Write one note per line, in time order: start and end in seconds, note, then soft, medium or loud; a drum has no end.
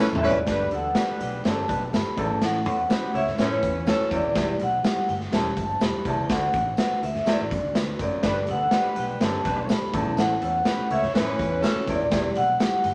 0.00 0.27 A3 medium
0.00 0.28 B3 medium
0.00 0.28 C#4 medium
0.00 0.28 E4 medium
0.00 0.28 A4 loud
0.00 tambourine medium
0.11 0.20 A1 medium
0.11 floor tom loud
0.17 0.24 E5 medium
0.23 0.41 A2 loud
0.23 0.38 E3 loud
0.23 0.39 C#4 loud
0.23 0.39 B4 loud
0.23 high conga medium
0.27 0.71 D5 loud
0.27 floor tom loud
0.46 0.65 G1 medium
0.46 0.67 G2 medium
0.46 0.68 G3 medium
0.46 0.76 B3 medium
0.46 0.76 D4 medium
0.46 0.68 D4 medium
0.46 0.77 G4 medium
0.46 0.77 A4 medium
0.46 0.68 B4 loud
0.46 kick loud
0.46 snare medium
0.46 closed hi-hat medium
0.46 tambourine medium
0.71 0.90 D2 medium
0.71 0.91 D3 medium
0.71 0.92 B3 medium
0.71 0.91 A4 medium
0.71 1.23 F#5 medium
0.71 closed hi-hat medium
0.71 muted conga soft
0.95 1.42 G3 loud
0.95 1.25 B3 medium
0.95 1.25 D4 medium
0.95 1.42 D4 medium
0.95 1.25 G4 medium
0.95 1.26 A4 medium
0.95 1.42 B4 loud
0.95 snare loud
0.95 closed hi-hat medium
0.95 tambourine medium
0.95 high conga medium
1.08 muted picked electric bass stroke soft
1.20 1.38 B1 medium
1.20 1.44 G5 medium
1.20 closed hi-hat medium
1.44 1.63 G1 medium
1.44 1.64 F#2 medium
1.44 1.64 B3 medium
1.44 1.74 B3 medium
1.44 1.74 D4 medium
1.44 1.74 G4 medium
1.44 1.64 A4 medium
1.44 1.74 A4 medium
1.44 1.64 D5 medium
1.44 1.70 A5 loud
1.44 snare loud
1.44 closed hi-hat medium
1.44 tambourine medium
1.44 muted conga soft
1.68 1.87 B1 medium
1.68 1.88 G3 medium
1.68 1.88 D4 medium
1.68 1.87 B4 medium
1.68 1.93 A5 medium
1.68 kick medium
1.68 closed hi-hat medium
1.68 muted conga soft
1.68 low conga medium
1.91 2.02 G1 medium
1.91 2.17 B3 medium
1.91 2.17 D4 medium
1.91 2.17 G4 medium
1.91 2.17 A4 medium
1.91 2.19 B5 medium
1.91 snare loud
1.91 closed hi-hat medium
1.91 tambourine medium
1.91 high conga medium
2.06 high conga soft
2.16 2.27 A1 medium
2.16 2.37 E2 medium
2.16 2.75 A3 medium
2.16 2.76 C#4 medium
2.16 2.76 E4 medium
2.16 2.76 A4 medium
2.16 2.43 A5 medium
2.16 kick loud
2.16 closed hi-hat medium
2.16 high conga medium
2.30 2.39 G#1 medium
2.42 2.66 A1 loud
2.42 2.61 A2 medium
2.42 3.18 F#5 medium
2.42 snare medium
2.42 closed hi-hat medium
2.42 tambourine medium
2.42 muted conga soft
2.65 2.84 E2 medium
2.65 2.85 E3 medium
2.65 2.85 C#4 medium
2.65 2.85 A4 medium
2.65 closed hi-hat medium
2.65 muted conga medium
2.89 3.19 A3 medium
2.89 3.09 B3 medium
2.89 3.19 C#4 medium
2.89 3.19 E4 medium
2.89 3.20 F#4 medium
2.89 3.09 G4 medium
2.89 3.09 B4 medium
2.89 snare loud
2.89 closed hi-hat medium
2.89 tambourine medium
2.89 high conga medium
3.03 muted picked electric bass stroke soft
3.13 3.32 C#2 medium
3.13 3.33 A3 medium
3.13 3.33 E4 loud
3.13 3.33 C#5 loud
3.13 3.40 E5 medium
3.13 closed hi-hat medium
3.27 snare soft
3.27 low conga medium
3.38 3.59 F#2 medium
3.38 3.56 A2 medium
3.38 3.84 E3 loud
3.38 3.68 A3 medium
3.38 3.84 C#4 loud
3.38 3.68 C#4 medium
3.38 3.68 E4 medium
3.38 3.68 A4 medium
3.38 3.84 B4 loud
3.38 3.85 C#5 medium
3.38 snare loud
3.38 closed hi-hat medium
3.38 tambourine medium
3.38 muted conga soft
3.63 3.90 E2 medium
3.63 kick medium
3.63 closed hi-hat medium
3.63 muted conga soft
3.63 low conga medium
3.86 4.21 E3 loud
3.86 4.16 A3 medium
3.86 4.21 C#4 loud
3.86 4.16 C#4 medium
3.86 4.17 E4 medium
3.86 4.17 F#4 medium
3.86 4.21 A4 loud
3.86 snare loud
3.86 closed hi-hat medium
3.86 tambourine medium
3.86 high conga medium
4.00 high conga soft
4.11 4.20 E2 medium
4.11 4.31 E2 medium
4.11 4.57 D5 medium
4.11 kick medium
4.11 closed hi-hat medium
4.11 high conga medium
4.24 4.33 D#1 medium
4.35 4.53 E1 loud
4.35 4.55 E2 medium
4.35 4.65 G3 medium
4.35 4.65 B3 medium
4.35 4.65 E4 medium
4.35 4.65 G4 medium
4.35 kick loud
4.35 snare loud
4.35 closed hi-hat medium
4.35 tambourine medium
4.59 4.78 B1 medium
4.59 5.12 F#5 medium
4.59 closed hi-hat medium
4.59 muted conga soft
4.83 5.13 G3 medium
4.83 5.13 B3 medium
4.83 5.14 E4 medium
4.83 5.14 G4 medium
4.83 snare loud
4.83 closed hi-hat medium
4.83 tambourine medium
4.83 high conga medium
4.96 muted picked electric bass stroke soft
5.09 5.27 G1 medium
5.09 5.32 G5 medium
5.09 closed hi-hat medium
5.20 snare soft
5.31 5.51 E1 medium
5.31 5.53 F#2 medium
5.31 5.61 G3 medium
5.31 5.62 B3 medium
5.31 5.62 E4 medium
5.31 5.62 G4 medium
5.31 5.57 A5 loud
5.31 snare loud
5.31 closed hi-hat medium
5.31 tambourine medium
5.31 muted conga soft
5.57 5.75 G1 medium
5.57 5.80 A5 medium
5.57 kick medium
5.57 closed hi-hat medium
5.57 muted conga soft
5.57 low conga medium
5.80 5.91 E1 medium
5.80 6.10 G3 medium
5.80 6.10 B3 medium
5.80 6.10 E4 medium
5.80 6.11 G4 medium
5.80 6.05 B5 medium
5.80 snare loud
5.80 closed hi-hat medium
5.80 tambourine medium
5.80 high conga medium
5.94 high conga medium
6.05 6.14 C2 medium
6.05 6.25 E2 medium
6.05 6.15 A5 medium
6.05 kick medium
6.05 closed hi-hat medium
6.05 high conga medium
6.18 6.27 C#2 medium
6.24 6.31 G5 medium
6.29 6.49 D2 medium
6.29 6.48 D2 medium
6.29 6.59 A3 medium
6.29 6.59 D4 medium
6.29 6.59 F#4 medium
6.29 6.59 A4 medium
6.29 7.05 F#5 medium
6.29 kick loud
6.29 snare medium
6.29 closed hi-hat medium
6.29 tambourine medium
6.53 6.72 A1 medium
6.53 kick medium
6.53 closed hi-hat medium
6.53 muted conga soft
6.77 7.08 A3 medium
6.77 7.08 D4 medium
6.77 7.08 F#4 medium
6.77 7.09 B4 medium
6.77 snare loud
6.77 closed hi-hat medium
6.77 tambourine medium
6.77 high conga medium
6.91 muted picked electric bass stroke soft
7.03 7.21 D2 medium
7.03 7.21 E5 medium
7.03 closed hi-hat medium
7.15 snare soft
7.15 low conga medium
7.23 7.46 E2 medium
7.23 7.56 A3 medium
7.23 7.56 D4 medium
7.23 7.56 F#4 medium
7.23 7.29 E5 medium
7.23 closed hi-hat medium
7.23 tambourine medium
7.27 7.57 A4 medium
7.27 7.73 D5 medium
7.27 snare loud
7.27 muted conga soft
7.40 7.48 A1 medium
7.51 7.60 F#2 medium
7.51 kick medium
7.51 closed hi-hat medium
7.51 muted conga soft
7.51 low conga medium
7.63 7.72 D2 medium
7.74 7.94 D2 medium
7.74 8.04 A3 medium
7.74 8.04 D4 medium
7.74 8.05 F#4 medium
7.74 8.05 B4 medium
7.74 snare loud
7.74 closed hi-hat medium
7.74 tambourine medium
7.74 high conga medium
7.89 high conga soft
7.99 8.08 F#1 medium
7.99 8.19 F#2 medium
7.99 8.46 D5 medium
7.99 kick medium
7.99 closed hi-hat medium
7.99 high conga medium
8.23 8.50 G1 loud
8.23 8.44 G2 medium
8.23 8.43 G3 loud
8.23 8.53 B3 medium
8.23 8.53 D4 medium
8.23 8.43 D4 medium
8.23 8.53 G4 medium
8.23 8.53 A4 medium
8.23 8.43 B4 loud
8.23 kick loud
8.23 snare medium
8.23 closed hi-hat medium
8.23 tambourine medium
8.47 8.66 D2 medium
8.47 8.68 D3 medium
8.47 8.68 B3 medium
8.47 8.68 A4 medium
8.47 closed hi-hat medium
8.47 muted conga soft
8.51 9.00 F#5 medium
8.71 9.18 G3 loud
8.71 9.01 B3 medium
8.71 9.01 D4 medium
8.71 9.18 D4 medium
8.71 9.02 G4 medium
8.71 9.18 B4 loud
8.71 9.02 B4 medium
8.71 snare loud
8.71 closed hi-hat medium
8.71 tambourine medium
8.71 high conga medium
8.85 muted picked electric bass stroke soft
8.96 9.15 B1 medium
8.96 9.23 G5 medium
8.96 closed hi-hat medium
9.20 9.39 G1 medium
9.20 9.40 F#2 medium
9.20 9.50 B3 medium
9.20 9.40 B3 medium
9.20 9.50 D4 medium
9.20 9.51 G4 medium
9.20 9.41 A4 medium
9.20 9.51 B4 medium
9.20 9.40 D5 medium
9.20 9.46 A5 loud
9.20 snare loud
9.20 closed hi-hat medium
9.20 tambourine medium
9.20 muted conga medium
9.45 9.72 B1 medium
9.45 9.65 G3 medium
9.45 9.65 D4 medium
9.45 9.65 B4 loud
9.45 9.71 A5 medium
9.45 kick loud
9.45 closed hi-hat medium
9.45 muted conga soft
9.45 low conga medium
9.68 9.93 B3 medium
9.68 9.93 D4 medium
9.68 9.94 G4 medium
9.68 9.92 A4 medium
9.68 9.93 B5 medium
9.68 snare loud
9.68 closed hi-hat medium
9.68 tambourine medium
9.68 high conga medium
9.82 high conga medium
9.92 10.03 A1 loud
9.92 10.13 E2 medium
9.92 10.51 A3 medium
9.92 10.51 C#4 medium
9.92 10.52 E4 medium
9.92 10.52 A4 medium
9.92 kick loud
9.92 closed hi-hat medium
9.92 high conga medium
9.96 10.20 A5 medium
10.05 10.14 B1 medium
10.17 10.35 A1 loud
10.17 10.37 A2 medium
10.17 10.93 F#5 loud
10.17 snare medium
10.17 closed hi-hat medium
10.17 tambourine medium
10.17 muted conga soft
10.40 10.60 E2 medium
10.40 10.61 E3 medium
10.40 10.61 C#4 medium
10.40 10.61 A4 medium
10.40 closed hi-hat medium
10.40 muted conga medium
10.65 10.96 A3 medium
10.65 10.86 B3 medium
10.65 10.96 C#4 medium
10.65 10.96 E4 medium
10.65 10.86 G4 medium
10.65 10.86 B4 medium
10.65 10.96 B4 medium
10.65 snare loud
10.65 closed hi-hat medium
10.65 tambourine medium
10.65 high conga medium
10.79 muted picked electric bass stroke soft
10.90 11.08 C#2 medium
10.90 11.10 A3 loud
10.90 11.10 E4 medium
10.90 11.10 C#5 loud
10.90 11.16 E5 medium
10.90 closed hi-hat medium
11.02 snare soft
11.02 low conga medium
11.14 11.35 F#2 medium
11.14 11.32 A2 medium
11.14 11.60 E3 loud
11.14 11.44 A3 medium
11.14 11.60 C#4 loud
11.14 11.44 C#4 medium
11.14 11.44 E4 medium
11.14 11.44 A4 medium
11.14 11.60 B4 loud
11.14 11.61 C#5 medium
11.14 snare loud
11.14 closed hi-hat loud
11.14 tambourine medium
11.14 muted conga soft
11.39 11.66 E2 medium
11.39 kick medium
11.39 closed hi-hat medium
11.39 muted conga soft
11.39 low conga medium
11.62 11.97 E3 loud
11.62 11.92 A3 medium
11.62 11.97 C#4 loud
11.62 11.92 C#4 medium
11.62 11.93 E4 medium
11.62 11.93 F#4 medium
11.62 11.97 A4 loud
11.62 snare loud
11.62 closed hi-hat medium
11.62 tambourine medium
11.62 high conga medium
11.75 high conga medium
11.86 12.07 E2 medium
11.86 11.97 E2 medium
11.86 12.39 D5 medium
11.86 kick medium
11.86 closed hi-hat medium
11.86 high conga medium
11.99 12.08 D#1 medium
12.11 12.30 E1 loud
12.11 12.31 E2 medium
12.11 12.41 G3 medium
12.11 12.41 B3 medium
12.11 12.41 E4 medium
12.11 12.41 G4 medium
12.11 kick loud
12.11 snare loud
12.11 closed hi-hat medium
12.11 tambourine medium
12.11 muted conga soft
12.35 12.54 B1 medium
12.35 12.86 F#5 loud
12.35 closed hi-hat medium
12.35 muted conga medium
12.60 12.89 G3 medium
12.60 12.89 B3 medium
12.60 12.89 E4 medium
12.60 12.90 G4 medium
12.60 snare loud
12.60 closed hi-hat medium
12.60 tambourine medium
12.60 high conga medium
12.73 muted picked electric bass stroke soft
12.84 12.94 G1 medium
12.84 12.94 G5 medium
12.84 closed hi-hat medium